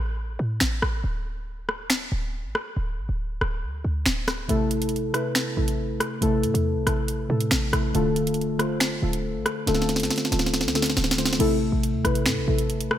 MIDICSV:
0, 0, Header, 1, 4, 480
1, 0, Start_track
1, 0, Key_signature, 0, "minor"
1, 0, Tempo, 431655
1, 1156, Time_signature, 4, 2, 24, 8
1, 14438, End_track
2, 0, Start_track
2, 0, Title_t, "Synth keys"
2, 0, Program_c, 0, 88
2, 0, Control_c, 0, 64, 127
2, 1170, Control_c, 0, 64, 0
2, 4982, Note_on_c, 0, 48, 116
2, 4990, Note_on_c, 0, 57, 100
2, 4998, Note_on_c, 0, 64, 100
2, 5005, Note_on_c, 0, 69, 127
2, 5174, Control_c, 0, 64, 127
2, 5573, Note_off_c, 0, 48, 0
2, 5577, Note_off_c, 0, 57, 0
2, 5581, Note_off_c, 0, 64, 0
2, 5584, Note_off_c, 0, 69, 0
2, 5705, Note_on_c, 0, 48, 90
2, 5712, Note_on_c, 0, 57, 72
2, 5720, Note_on_c, 0, 64, 85
2, 5728, Note_on_c, 0, 71, 96
2, 6100, Note_off_c, 0, 48, 0
2, 6103, Note_off_c, 0, 57, 0
2, 6107, Note_off_c, 0, 64, 0
2, 6111, Note_off_c, 0, 71, 0
2, 6185, Note_on_c, 0, 48, 87
2, 6193, Note_on_c, 0, 57, 81
2, 6200, Note_on_c, 0, 64, 78
2, 6208, Note_on_c, 0, 69, 91
2, 6774, Note_off_c, 0, 48, 0
2, 6778, Note_off_c, 0, 57, 0
2, 6782, Note_off_c, 0, 64, 0
2, 6786, Note_off_c, 0, 69, 0
2, 6904, Note_on_c, 0, 48, 107
2, 6912, Note_on_c, 0, 57, 108
2, 6920, Note_on_c, 0, 64, 102
2, 6927, Note_on_c, 0, 69, 125
2, 7494, Note_off_c, 0, 48, 0
2, 7498, Note_off_c, 0, 57, 0
2, 7502, Note_off_c, 0, 64, 0
2, 7505, Note_off_c, 0, 69, 0
2, 7624, Note_on_c, 0, 48, 82
2, 7632, Note_on_c, 0, 57, 77
2, 7640, Note_on_c, 0, 64, 79
2, 7648, Note_on_c, 0, 69, 99
2, 8019, Note_off_c, 0, 48, 0
2, 8023, Note_off_c, 0, 57, 0
2, 8027, Note_off_c, 0, 64, 0
2, 8031, Note_off_c, 0, 69, 0
2, 8105, Note_on_c, 0, 48, 89
2, 8112, Note_on_c, 0, 57, 74
2, 8120, Note_on_c, 0, 64, 77
2, 8128, Note_on_c, 0, 69, 96
2, 8499, Note_off_c, 0, 48, 0
2, 8503, Note_off_c, 0, 57, 0
2, 8507, Note_off_c, 0, 64, 0
2, 8511, Note_off_c, 0, 69, 0
2, 8583, Note_on_c, 0, 48, 80
2, 8591, Note_on_c, 0, 57, 72
2, 8598, Note_on_c, 0, 64, 69
2, 8606, Note_on_c, 0, 69, 82
2, 8784, Note_off_c, 0, 48, 0
2, 8788, Note_off_c, 0, 57, 0
2, 8792, Note_off_c, 0, 64, 0
2, 8796, Note_off_c, 0, 69, 0
2, 8823, Note_on_c, 0, 50, 110
2, 8832, Note_on_c, 0, 57, 105
2, 8839, Note_on_c, 0, 65, 104
2, 8847, Note_on_c, 0, 69, 122
2, 8850, Control_c, 0, 64, 0
2, 9068, Control_c, 0, 64, 127
2, 9414, Note_off_c, 0, 50, 0
2, 9418, Note_off_c, 0, 57, 0
2, 9421, Note_off_c, 0, 65, 0
2, 9425, Note_off_c, 0, 69, 0
2, 9545, Note_on_c, 0, 50, 83
2, 9553, Note_on_c, 0, 57, 77
2, 9561, Note_on_c, 0, 65, 84
2, 9569, Note_on_c, 0, 72, 93
2, 9940, Note_off_c, 0, 50, 0
2, 9944, Note_off_c, 0, 57, 0
2, 9947, Note_off_c, 0, 65, 0
2, 9952, Note_off_c, 0, 72, 0
2, 10024, Note_on_c, 0, 50, 87
2, 10032, Note_on_c, 0, 57, 80
2, 10040, Note_on_c, 0, 65, 78
2, 10047, Note_on_c, 0, 69, 97
2, 10614, Note_off_c, 0, 50, 0
2, 10618, Note_off_c, 0, 57, 0
2, 10622, Note_off_c, 0, 65, 0
2, 10625, Note_off_c, 0, 69, 0
2, 10745, Note_on_c, 0, 50, 106
2, 10753, Note_on_c, 0, 57, 103
2, 10760, Note_on_c, 0, 65, 103
2, 10768, Note_on_c, 0, 69, 127
2, 11334, Note_off_c, 0, 50, 0
2, 11338, Note_off_c, 0, 57, 0
2, 11342, Note_off_c, 0, 65, 0
2, 11346, Note_off_c, 0, 69, 0
2, 11465, Note_on_c, 0, 50, 84
2, 11473, Note_on_c, 0, 57, 81
2, 11481, Note_on_c, 0, 65, 77
2, 11488, Note_on_c, 0, 69, 101
2, 11860, Note_off_c, 0, 50, 0
2, 11864, Note_off_c, 0, 57, 0
2, 11867, Note_off_c, 0, 65, 0
2, 11871, Note_off_c, 0, 69, 0
2, 11944, Note_on_c, 0, 50, 88
2, 11951, Note_on_c, 0, 57, 75
2, 11959, Note_on_c, 0, 65, 76
2, 11967, Note_on_c, 0, 69, 93
2, 12339, Note_off_c, 0, 50, 0
2, 12343, Note_off_c, 0, 57, 0
2, 12347, Note_off_c, 0, 65, 0
2, 12351, Note_off_c, 0, 69, 0
2, 12424, Note_on_c, 0, 50, 80
2, 12431, Note_on_c, 0, 57, 73
2, 12439, Note_on_c, 0, 65, 67
2, 12447, Note_on_c, 0, 72, 86
2, 12625, Note_off_c, 0, 50, 0
2, 12628, Note_off_c, 0, 57, 0
2, 12632, Note_off_c, 0, 65, 0
2, 12636, Note_off_c, 0, 72, 0
2, 12662, Note_on_c, 0, 48, 120
2, 12669, Note_on_c, 0, 57, 103
2, 12677, Note_on_c, 0, 64, 104
2, 12685, Note_on_c, 0, 69, 126
2, 12690, Control_c, 0, 64, 0
2, 12856, Control_c, 0, 64, 127
2, 13253, Note_off_c, 0, 48, 0
2, 13256, Note_off_c, 0, 57, 0
2, 13260, Note_off_c, 0, 64, 0
2, 13264, Note_off_c, 0, 69, 0
2, 13384, Note_on_c, 0, 48, 94
2, 13392, Note_on_c, 0, 57, 75
2, 13400, Note_on_c, 0, 64, 87
2, 13408, Note_on_c, 0, 71, 102
2, 13779, Note_off_c, 0, 48, 0
2, 13783, Note_off_c, 0, 57, 0
2, 13787, Note_off_c, 0, 64, 0
2, 13791, Note_off_c, 0, 71, 0
2, 13865, Note_on_c, 0, 48, 90
2, 13873, Note_on_c, 0, 57, 85
2, 13881, Note_on_c, 0, 64, 82
2, 13888, Note_on_c, 0, 69, 94
2, 14438, Note_off_c, 0, 48, 0
2, 14438, Note_off_c, 0, 57, 0
2, 14438, Note_off_c, 0, 64, 0
2, 14438, Note_off_c, 0, 69, 0
2, 14438, End_track
3, 0, Start_track
3, 0, Title_t, "808-style bass"
3, 0, Program_c, 1, 38
3, 0, Note_on_c, 1, 33, 104
3, 417, Note_off_c, 1, 33, 0
3, 436, Note_on_c, 1, 45, 106
3, 667, Note_off_c, 1, 45, 0
3, 677, Note_on_c, 1, 33, 102
3, 907, Note_off_c, 1, 33, 0
3, 916, Note_on_c, 1, 33, 103
3, 1146, Note_off_c, 1, 33, 0
3, 1156, Note_on_c, 1, 26, 116
3, 2311, Note_off_c, 1, 26, 0
3, 2356, Note_on_c, 1, 26, 109
3, 2716, Note_on_c, 1, 33, 97
3, 2733, Note_off_c, 1, 26, 0
3, 2830, Note_off_c, 1, 33, 0
3, 3076, Note_on_c, 1, 26, 110
3, 3316, Note_on_c, 1, 33, 100
3, 3333, Note_off_c, 1, 26, 0
3, 3430, Note_off_c, 1, 33, 0
3, 3436, Note_on_c, 1, 26, 101
3, 3781, Note_off_c, 1, 26, 0
3, 3795, Note_on_c, 1, 26, 109
3, 4036, Note_on_c, 1, 38, 98
3, 4052, Note_off_c, 1, 26, 0
3, 4264, Note_off_c, 1, 38, 0
3, 4276, Note_on_c, 1, 38, 102
3, 4506, Note_off_c, 1, 38, 0
3, 4516, Note_on_c, 1, 26, 106
3, 4977, Note_off_c, 1, 26, 0
3, 4996, Note_on_c, 1, 33, 116
3, 5687, Note_off_c, 1, 33, 0
3, 6195, Note_on_c, 1, 33, 109
3, 6435, Note_on_c, 1, 31, 98
3, 6452, Note_off_c, 1, 33, 0
3, 6555, Note_on_c, 1, 33, 97
3, 6572, Note_off_c, 1, 31, 0
3, 6670, Note_off_c, 1, 33, 0
3, 6916, Note_on_c, 1, 33, 106
3, 7156, Note_on_c, 1, 45, 98
3, 7172, Note_off_c, 1, 33, 0
3, 7270, Note_off_c, 1, 45, 0
3, 7275, Note_on_c, 1, 40, 107
3, 7516, Note_on_c, 1, 35, 99
3, 7532, Note_off_c, 1, 40, 0
3, 7630, Note_off_c, 1, 35, 0
3, 7636, Note_on_c, 1, 33, 104
3, 8097, Note_off_c, 1, 33, 0
3, 8115, Note_on_c, 1, 45, 105
3, 8346, Note_off_c, 1, 45, 0
3, 8356, Note_on_c, 1, 33, 106
3, 8586, Note_off_c, 1, 33, 0
3, 8595, Note_on_c, 1, 33, 105
3, 8826, Note_off_c, 1, 33, 0
3, 8836, Note_on_c, 1, 26, 110
3, 9992, Note_off_c, 1, 26, 0
3, 10036, Note_on_c, 1, 26, 103
3, 10397, Note_on_c, 1, 33, 98
3, 10413, Note_off_c, 1, 26, 0
3, 10510, Note_off_c, 1, 33, 0
3, 10756, Note_on_c, 1, 26, 107
3, 11116, Note_on_c, 1, 33, 102
3, 11133, Note_off_c, 1, 26, 0
3, 11230, Note_off_c, 1, 33, 0
3, 11476, Note_on_c, 1, 26, 108
3, 11836, Note_on_c, 1, 38, 104
3, 11852, Note_off_c, 1, 26, 0
3, 12178, Note_off_c, 1, 38, 0
3, 12196, Note_on_c, 1, 26, 110
3, 12657, Note_off_c, 1, 26, 0
3, 12676, Note_on_c, 1, 33, 118
3, 13022, Note_off_c, 1, 33, 0
3, 13036, Note_on_c, 1, 33, 106
3, 13276, Note_on_c, 1, 40, 102
3, 13292, Note_off_c, 1, 33, 0
3, 13390, Note_off_c, 1, 40, 0
3, 13396, Note_on_c, 1, 33, 109
3, 13635, Note_on_c, 1, 45, 98
3, 13652, Note_off_c, 1, 33, 0
3, 13756, Note_on_c, 1, 33, 105
3, 13773, Note_off_c, 1, 45, 0
3, 13870, Note_off_c, 1, 33, 0
3, 13876, Note_on_c, 1, 33, 109
3, 14116, Note_on_c, 1, 31, 101
3, 14133, Note_off_c, 1, 33, 0
3, 14236, Note_on_c, 1, 33, 99
3, 14253, Note_off_c, 1, 31, 0
3, 14350, Note_off_c, 1, 33, 0
3, 14438, End_track
4, 0, Start_track
4, 0, Title_t, "Drums"
4, 670, Note_on_c, 9, 26, 88
4, 676, Note_on_c, 9, 38, 110
4, 781, Note_off_c, 9, 26, 0
4, 788, Note_off_c, 9, 38, 0
4, 916, Note_on_c, 9, 37, 98
4, 1028, Note_off_c, 9, 37, 0
4, 1876, Note_on_c, 9, 37, 86
4, 1987, Note_off_c, 9, 37, 0
4, 2110, Note_on_c, 9, 26, 93
4, 2116, Note_on_c, 9, 38, 116
4, 2221, Note_off_c, 9, 26, 0
4, 2227, Note_off_c, 9, 38, 0
4, 2836, Note_on_c, 9, 37, 98
4, 2947, Note_off_c, 9, 37, 0
4, 3796, Note_on_c, 9, 37, 87
4, 3907, Note_off_c, 9, 37, 0
4, 4510, Note_on_c, 9, 26, 87
4, 4516, Note_on_c, 9, 38, 113
4, 4621, Note_off_c, 9, 26, 0
4, 4628, Note_off_c, 9, 38, 0
4, 4757, Note_on_c, 9, 37, 96
4, 4757, Note_on_c, 9, 38, 70
4, 4868, Note_off_c, 9, 37, 0
4, 4868, Note_off_c, 9, 38, 0
4, 4996, Note_on_c, 9, 42, 83
4, 5108, Note_off_c, 9, 42, 0
4, 5236, Note_on_c, 9, 42, 82
4, 5347, Note_off_c, 9, 42, 0
4, 5356, Note_on_c, 9, 42, 80
4, 5436, Note_off_c, 9, 42, 0
4, 5436, Note_on_c, 9, 42, 62
4, 5516, Note_off_c, 9, 42, 0
4, 5516, Note_on_c, 9, 42, 49
4, 5627, Note_off_c, 9, 42, 0
4, 5716, Note_on_c, 9, 37, 87
4, 5719, Note_on_c, 9, 42, 89
4, 5827, Note_off_c, 9, 37, 0
4, 5830, Note_off_c, 9, 42, 0
4, 5949, Note_on_c, 9, 26, 93
4, 5955, Note_on_c, 9, 38, 119
4, 5955, Note_on_c, 9, 42, 80
4, 6060, Note_off_c, 9, 26, 0
4, 6067, Note_off_c, 9, 38, 0
4, 6067, Note_off_c, 9, 42, 0
4, 6314, Note_on_c, 9, 42, 81
4, 6425, Note_off_c, 9, 42, 0
4, 6676, Note_on_c, 9, 37, 96
4, 6679, Note_on_c, 9, 42, 82
4, 6787, Note_off_c, 9, 37, 0
4, 6790, Note_off_c, 9, 42, 0
4, 6916, Note_on_c, 9, 42, 88
4, 7027, Note_off_c, 9, 42, 0
4, 7155, Note_on_c, 9, 42, 84
4, 7267, Note_off_c, 9, 42, 0
4, 7282, Note_on_c, 9, 42, 77
4, 7393, Note_off_c, 9, 42, 0
4, 7636, Note_on_c, 9, 37, 90
4, 7639, Note_on_c, 9, 42, 88
4, 7747, Note_off_c, 9, 37, 0
4, 7750, Note_off_c, 9, 42, 0
4, 7876, Note_on_c, 9, 42, 78
4, 7987, Note_off_c, 9, 42, 0
4, 8234, Note_on_c, 9, 42, 79
4, 8346, Note_off_c, 9, 42, 0
4, 8350, Note_on_c, 9, 26, 89
4, 8356, Note_on_c, 9, 38, 112
4, 8461, Note_off_c, 9, 26, 0
4, 8468, Note_off_c, 9, 38, 0
4, 8596, Note_on_c, 9, 37, 99
4, 8599, Note_on_c, 9, 42, 75
4, 8708, Note_off_c, 9, 37, 0
4, 8710, Note_off_c, 9, 42, 0
4, 8836, Note_on_c, 9, 42, 90
4, 8948, Note_off_c, 9, 42, 0
4, 9076, Note_on_c, 9, 42, 82
4, 9187, Note_off_c, 9, 42, 0
4, 9196, Note_on_c, 9, 42, 80
4, 9276, Note_off_c, 9, 42, 0
4, 9276, Note_on_c, 9, 42, 63
4, 9356, Note_off_c, 9, 42, 0
4, 9356, Note_on_c, 9, 42, 48
4, 9468, Note_off_c, 9, 42, 0
4, 9556, Note_on_c, 9, 37, 87
4, 9559, Note_on_c, 9, 42, 84
4, 9667, Note_off_c, 9, 37, 0
4, 9670, Note_off_c, 9, 42, 0
4, 9790, Note_on_c, 9, 26, 92
4, 9796, Note_on_c, 9, 38, 118
4, 9796, Note_on_c, 9, 42, 79
4, 9901, Note_off_c, 9, 26, 0
4, 9907, Note_off_c, 9, 38, 0
4, 9907, Note_off_c, 9, 42, 0
4, 10155, Note_on_c, 9, 42, 82
4, 10266, Note_off_c, 9, 42, 0
4, 10516, Note_on_c, 9, 37, 99
4, 10519, Note_on_c, 9, 42, 84
4, 10628, Note_off_c, 9, 37, 0
4, 10630, Note_off_c, 9, 42, 0
4, 10756, Note_on_c, 9, 38, 60
4, 10757, Note_on_c, 9, 42, 83
4, 10836, Note_off_c, 9, 38, 0
4, 10836, Note_on_c, 9, 38, 54
4, 10868, Note_off_c, 9, 42, 0
4, 10917, Note_off_c, 9, 38, 0
4, 10917, Note_on_c, 9, 38, 64
4, 10996, Note_off_c, 9, 38, 0
4, 10996, Note_on_c, 9, 38, 55
4, 10996, Note_on_c, 9, 42, 83
4, 11077, Note_off_c, 9, 38, 0
4, 11077, Note_on_c, 9, 38, 67
4, 11107, Note_off_c, 9, 42, 0
4, 11117, Note_on_c, 9, 42, 80
4, 11157, Note_off_c, 9, 38, 0
4, 11157, Note_on_c, 9, 38, 61
4, 11177, Note_off_c, 9, 42, 0
4, 11177, Note_on_c, 9, 42, 66
4, 11237, Note_off_c, 9, 38, 0
4, 11237, Note_off_c, 9, 42, 0
4, 11237, Note_on_c, 9, 38, 73
4, 11237, Note_on_c, 9, 42, 57
4, 11297, Note_off_c, 9, 42, 0
4, 11297, Note_on_c, 9, 42, 47
4, 11317, Note_off_c, 9, 38, 0
4, 11317, Note_on_c, 9, 38, 64
4, 11397, Note_off_c, 9, 38, 0
4, 11397, Note_on_c, 9, 38, 73
4, 11408, Note_off_c, 9, 42, 0
4, 11476, Note_off_c, 9, 38, 0
4, 11476, Note_on_c, 9, 38, 66
4, 11479, Note_on_c, 9, 42, 87
4, 11557, Note_off_c, 9, 38, 0
4, 11557, Note_on_c, 9, 38, 80
4, 11590, Note_off_c, 9, 42, 0
4, 11636, Note_off_c, 9, 38, 0
4, 11636, Note_on_c, 9, 38, 71
4, 11716, Note_off_c, 9, 38, 0
4, 11716, Note_on_c, 9, 38, 81
4, 11716, Note_on_c, 9, 42, 79
4, 11796, Note_off_c, 9, 38, 0
4, 11796, Note_on_c, 9, 38, 72
4, 11827, Note_off_c, 9, 42, 0
4, 11876, Note_off_c, 9, 38, 0
4, 11876, Note_on_c, 9, 38, 90
4, 11957, Note_off_c, 9, 38, 0
4, 11957, Note_on_c, 9, 38, 77
4, 12037, Note_off_c, 9, 38, 0
4, 12037, Note_on_c, 9, 38, 96
4, 12075, Note_on_c, 9, 42, 80
4, 12117, Note_off_c, 9, 38, 0
4, 12117, Note_on_c, 9, 38, 82
4, 12186, Note_off_c, 9, 42, 0
4, 12196, Note_off_c, 9, 38, 0
4, 12196, Note_on_c, 9, 38, 97
4, 12276, Note_off_c, 9, 38, 0
4, 12276, Note_on_c, 9, 38, 85
4, 12356, Note_off_c, 9, 38, 0
4, 12356, Note_on_c, 9, 38, 104
4, 12436, Note_off_c, 9, 38, 0
4, 12436, Note_on_c, 9, 38, 85
4, 12439, Note_on_c, 9, 42, 74
4, 12516, Note_off_c, 9, 38, 0
4, 12516, Note_on_c, 9, 38, 106
4, 12550, Note_off_c, 9, 42, 0
4, 12596, Note_off_c, 9, 38, 0
4, 12596, Note_on_c, 9, 38, 90
4, 12676, Note_on_c, 9, 42, 90
4, 12676, Note_on_c, 9, 49, 106
4, 12707, Note_off_c, 9, 38, 0
4, 12787, Note_off_c, 9, 49, 0
4, 12788, Note_off_c, 9, 42, 0
4, 13160, Note_on_c, 9, 42, 88
4, 13271, Note_off_c, 9, 42, 0
4, 13396, Note_on_c, 9, 37, 91
4, 13399, Note_on_c, 9, 42, 90
4, 13507, Note_off_c, 9, 37, 0
4, 13510, Note_off_c, 9, 42, 0
4, 13515, Note_on_c, 9, 42, 69
4, 13626, Note_off_c, 9, 42, 0
4, 13629, Note_on_c, 9, 26, 96
4, 13635, Note_on_c, 9, 38, 118
4, 13740, Note_off_c, 9, 26, 0
4, 13747, Note_off_c, 9, 38, 0
4, 13994, Note_on_c, 9, 42, 80
4, 14105, Note_off_c, 9, 42, 0
4, 14118, Note_on_c, 9, 42, 75
4, 14229, Note_off_c, 9, 42, 0
4, 14239, Note_on_c, 9, 42, 91
4, 14351, Note_off_c, 9, 42, 0
4, 14356, Note_on_c, 9, 37, 100
4, 14438, Note_off_c, 9, 37, 0
4, 14438, End_track
0, 0, End_of_file